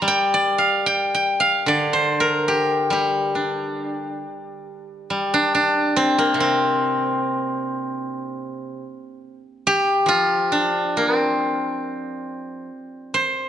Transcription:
0.00 2.49 G3 medium
0.00 0.31 F5 medium
0.00 1.17 A#5 medium
0.00 0.80 C6 medium
0.08 0.86 G5 medium
0.34 1.68 D5 medium
0.58 1.40 F5 medium
0.86 1.14 G5 medium
1.15 2.70 G5 medium
1.40 3.07 F5 medium
1.66 4.22 D3 medium
1.66 3.53 D5 medium
1.93 3.91 C5 medium
2.20 4.33 A#4 medium
2.48 2.92 G4 medium
2.90 5.09 G3 medium
2.90 5.28 G4 medium
3.35 5.11 D4 soft
5.10 7.58 G3 soft
5.34 5.54 D4 medium
5.55 8.34 D4 medium
5.96 6.40 C4 medium
6.18 9.41 A#3 medium
6.34 8.82 C3 medium
6.40 9.41 C4 medium
9.67 12.02 G4 loud
10.06 12.68 F3 medium
10.06 12.61 F4 loud
10.52 13.32 D4 medium
10.97 11.15 A#3 medium
11.15 13.49 C4 medium
13.14 13.49 C5 medium

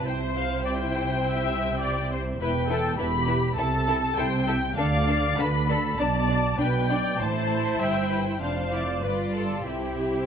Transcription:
0.06 2.37 C2 medium
0.06 2.36 C3 medium
0.06 2.36 E4 medium
0.06 0.64 C5 medium
0.06 2.37 C5 medium
0.06 0.16 G5 medium
0.37 0.65 F5 medium
0.64 0.72 D5 medium
0.64 2.09 G5 medium
0.94 1.02 C5 medium
1.25 1.81 E5 medium
1.82 2.11 D5 medium
2.12 2.20 C5 medium
2.40 2.92 E1 medium
2.40 2.92 E2 medium
2.40 2.49 E4 medium
2.40 2.69 B4 medium
2.40 2.49 B4 medium
2.40 2.95 G5 medium
2.70 2.78 E4 medium
2.70 2.99 A4 medium
2.70 2.78 B4 soft
2.99 3.51 E1 medium
2.99 3.51 E2 medium
2.99 3.07 E4 medium
2.99 3.56 G4 medium
2.99 3.07 B4 medium
2.99 3.57 B5 loud
3.27 3.35 E4 medium
3.27 3.35 B4 medium
3.57 4.11 C2 medium
3.57 4.10 C3 medium
3.57 3.66 E4 medium
3.57 3.66 A4 medium
3.57 4.17 A4 medium
3.57 4.16 A5 medium
3.88 3.96 E4 medium
3.88 3.96 A4 medium
4.17 4.70 C2 medium
4.17 4.70 C3 medium
4.17 4.26 E4 medium
4.17 4.25 A4 medium
4.17 4.47 C5 medium
4.17 4.77 G5 medium
4.47 4.55 E4 medium
4.47 4.56 A4 medium
4.47 4.56 E5 medium
4.77 5.32 D2 medium
4.77 5.32 D3 medium
4.77 4.85 D4 medium
4.77 4.85 A4 medium
4.77 5.38 D5 medium
4.77 5.38 F5 medium
5.08 5.16 D4 soft
5.08 5.16 A4 medium
5.38 5.93 D2 medium
5.38 5.93 D3 medium
5.38 5.46 D4 medium
5.38 5.46 A4 medium
5.38 5.70 B4 medium
5.38 6.00 B5 loud
5.69 5.77 D4 medium
5.69 5.99 A4 medium
5.69 5.77 A4 medium
5.99 6.53 B1 medium
5.99 6.52 B2 medium
5.99 6.08 D4 medium
5.99 6.07 D5 medium
5.99 6.60 D5 medium
5.99 6.59 A5 medium
6.29 6.37 D4 medium
6.29 6.37 D5 medium
6.58 7.13 B1 medium
6.58 7.13 B2 medium
6.58 6.66 D4 medium
6.58 6.89 B4 medium
6.58 6.66 D5 medium
6.58 7.20 G5 medium
6.89 6.97 D4 medium
6.89 6.98 D5 soft
6.89 7.20 D5 medium
7.20 7.77 A1 medium
7.20 7.77 A2 medium
7.20 8.38 E4 medium
7.20 8.37 C5 medium
7.20 7.81 C5 medium
7.20 7.81 A5 medium
7.80 8.41 G1 medium
7.80 8.41 G2 soft
7.80 8.11 E5 medium
7.80 8.42 G5 medium
8.11 8.19 B4 medium
8.42 9.03 F1 medium
8.42 9.03 F2 soft
8.42 8.73 D4 soft
8.42 9.03 C5 medium
8.42 8.50 C5 soft
8.42 9.03 F5 medium
8.72 8.81 E4 soft
8.72 9.03 D5 medium
9.04 9.68 G1 soft
9.04 9.68 G2 medium
9.04 9.67 F4 medium
9.04 9.12 B4 soft
9.04 9.36 B4 soft
9.04 9.67 D5 medium
9.36 9.68 A4 soft
9.68 10.26 C2 soft
9.68 10.24 C3 soft
9.68 10.26 E4 soft
9.68 10.26 G4 soft
9.68 10.26 G4 medium
9.68 10.26 C5 medium

